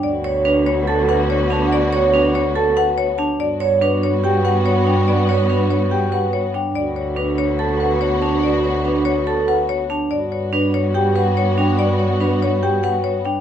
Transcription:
<<
  \new Staff \with { instrumentName = "Marimba" } { \time 4/4 \key d \major \tempo 4 = 143 d''8 cis''8 b'8 cis''8 a''8 fis''8 cis''8 a''8 | d''8 cis''8 b'8 cis''8 a''8 fis''8 cis''8 a''8 | d''8 cis''8 b'8 cis''8 g''8 fis''8 cis''8 g''8 | d''8 cis''8 b'8 cis''8 g''8 fis''8 cis''8 g''8 |
d''8 cis''8 b'8 cis''8 a''8 fis''8 cis''8 a''8 | d''8 cis''8 b'8 cis''8 a''8 fis''8 cis''8 a''8 | d''8 cis''8 b'8 cis''8 g''8 fis''8 cis''8 g''8 | d''8 cis''8 b'8 cis''8 g''8 fis''8 cis''8 g''8 | }
  \new Staff \with { instrumentName = "Vibraphone" } { \time 4/4 \key d \major r8 cis''8 d'8 r8 a'8 b'8 r8 d'8 | r8 cis''8 d'8 r8 a'8 b'8 r8 d'8 | r8 cis''8 d'8 r8 g'8 b'8 r8 d'8 | r8 cis''8 d'8 r8 g'8 b'8 r8 d'8 |
r4 d'8 r8 a'8 b'8 r8 d'8 | r4 d'8 r8 a'8 b'8 r8 d'8 | r4 d'8 r8 g'8 b'8 r8 d'8 | r4 d'8 r8 g'8 b'8 r8 d'8 | }
  \new Staff \with { instrumentName = "Clarinet" } { \time 4/4 \key d \major fis'1~ | fis'2.~ fis'8 r8 | fis'1~ | fis'2.~ fis'8 r8 |
fis'1~ | fis'2.~ fis'8 r8 | fis'1~ | fis'2.~ fis'8 r8 | }
  \new Staff \with { instrumentName = "String section" } { \time 4/4 \key d \major <b fis'>1~ | <b fis'>2.~ <b fis'>8 r8 | <b fis'>1~ | <b fis'>2.~ <b fis'>8 r8 |
<b fis'>1~ | <b fis'>2.~ <b fis'>8 r8 | <b fis'>1~ | <b fis'>2.~ <b fis'>8 r8 | }
  \new Staff \with { instrumentName = "Cello" } { \clef bass \time 4/4 \key d \major d,1~ | d,1 | g,1~ | g,1 |
d,1~ | d,1 | g,1~ | g,1 | }
>>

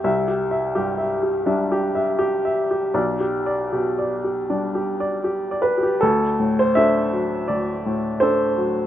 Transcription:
<<
  \new Staff \with { instrumentName = "Upright piano" } { \time 4/4 \key d \mixolydian \tempo 4 = 81 << { r1 | r2. r8 b'16 g'16 | a'8. c''16 e''4 d''4 c''4 | } \\ { \tuplet 3/2 { e''8 g'8 e''8 g'8 e''8 g'8 e''8 g'8 e''8 g'8 e''8 g'8 } | \tuplet 3/2 { d''8 g'8 d''8 g'8 d''8 g'8 d''8 g'8 d''8 g'8 d''8 g'8 } | r1 | } >> }
  \new Staff \with { instrumentName = "Upright piano" } { \clef bass \time 4/4 \key d \mixolydian c,4 g,4 <g d'>2 | b,,4 b,4 <g d'>2 | d,8 a,8 <d' a'>8 fis8 d,8 a,8 <d' a'>8 fis8 | }
>>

